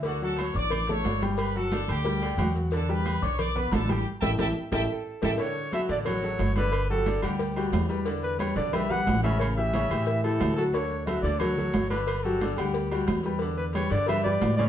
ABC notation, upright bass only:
X:1
M:4/4
L:1/8
Q:1/4=180
K:D
V:1 name="Upright bass" clef=bass
D,,3 A,,,3 G,,,2- | G,,,3 D,,3 E,,2- | E,,3 B,,,3 A,,,2 | z A,,, A,,, z A,,, z2 A,,, |
z3 A,,,3 G,,,2- | G,,,3 D,,3 E,,2- | E,,3 B,,,3 A,,,2- | A,,,3 A,,3 D,,2- |
D,,3 D,,3 G,,,2- | G,,,3 D,,3 E,,2- | E,,3 G,,3 A,,2 |]